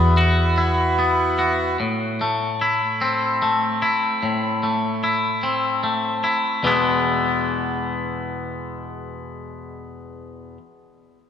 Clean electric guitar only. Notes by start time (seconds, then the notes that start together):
Already playing: E2 B3 E4 F#4
0.17 F#4
0.58 E4
0.99 B3
1.39 F#4
1.80 A2
2.21 A3
2.61 E4
3.01 C4
3.42 A3
3.82 E4
4.23 A2
4.63 A3
5.04 E4
5.43 C4
5.83 A3
6.24 E4
6.63 E2 B2 E3 G#3 B3
6.67 E4